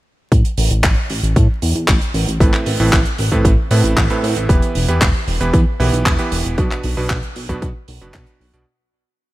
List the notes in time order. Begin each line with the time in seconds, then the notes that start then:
0.32 A1, kick, closed hi-hat
0.45 closed hi-hat
0.58 A1, open hi-hat
0.71 A1, closed hi-hat
0.84 A1, kick, clap, closed hi-hat
1.10 A1, open hi-hat
1.23 A1, closed hi-hat
1.36 A2, kick, closed hi-hat
1.62 E2, open hi-hat
1.75 E2, closed hi-hat
1.88 A1, kick, clap, closed hi-hat
2.01 closed hi-hat
2.14 A1, open hi-hat
2.27 A1, closed hi-hat
2.40 A1 A2 C4 E4 A4 B4, kick, closed hi-hat
2.53 clap, closed hi-hat
2.66 A1, open hi-hat
2.80 A1 A2 C4 E4 A4 B4, open hi-hat
2.93 A1, kick, clap, closed hi-hat
3.05 closed hi-hat
3.18 A1, open hi-hat
3.32 A1 A2 C4 E4 A4 B4, kick, closed hi-hat
3.45 A1, kick, closed hi-hat
3.71 A2 C4 E4 A4 B4, open hi-hat
3.84 A1, closed hi-hat
3.97 A1, kick, clap, closed hi-hat
4.10 A2 C4 E4 A4 B4, closed hi-hat
4.23 A2, open hi-hat
4.36 A1, closed hi-hat
4.49 E1 E3 B3 E4 G4 B4, kick, closed hi-hat
4.62 closed hi-hat
4.75 E1, open hi-hat
4.88 E1 E3 B3 E4 G4 B4, closed hi-hat
5.01 E1, kick, clap, closed hi-hat
5.28 E1, open hi-hat
5.41 E1 E3 B3 E4 G4 B4, closed hi-hat
5.54 E2, kick, closed hi-hat
5.80 B1 E3 B3 E4 G4 B4, open hi-hat
5.93 B1, closed hi-hat
6.06 E1, kick, clap, closed hi-hat
6.19 E3 B3 E4 G4 B4, closed hi-hat
6.32 E1, open hi-hat
6.45 E1, closed hi-hat
6.58 B1 B2 B3 D4 F#4 B4, kick, closed hi-hat
6.71 clap, closed hi-hat
6.83 B1, open hi-hat
6.97 B1 B2 B3 D4 F#4 B4, open hi-hat
7.10 B1, kick, clap
7.23 closed hi-hat
7.36 B1, open hi-hat
7.49 B1 B2 B3 D4 F#4 B4, kick, closed hi-hat
7.62 B1, kick, closed hi-hat
7.88 B1, open hi-hat
8.01 F#1 B2 B3 D4 F#4 B4, closed hi-hat
8.14 B1, kick, clap, closed hi-hat
8.27 closed hi-hat
8.41 B1, open hi-hat
8.53 B1 B2 B3 D4 F#4 D5, closed hi-hat